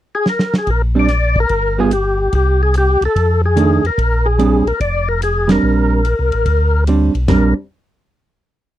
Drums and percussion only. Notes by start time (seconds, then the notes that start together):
0.26 snare
0.39 snare
0.54 snare
0.67 kick, ride
1.08 snare, hi-hat pedal, ride
1.36 kick
1.49 kick, ride
1.91 hi-hat pedal, ride
2.33 kick, ride
2.74 hi-hat pedal, ride
3.02 ride
3.16 kick, ride
3.57 hi-hat pedal, ride
3.85 ride
3.98 kick, ride
4.39 hi-hat pedal, ride
4.67 ride
4.80 kick, ride
5.22 hi-hat pedal, ride
5.49 snare, ride
6.05 hi-hat pedal, ride
6.32 ride
6.46 kick, ride
6.87 hi-hat pedal, ride
7.15 ride
7.28 snare, floor tom, ride bell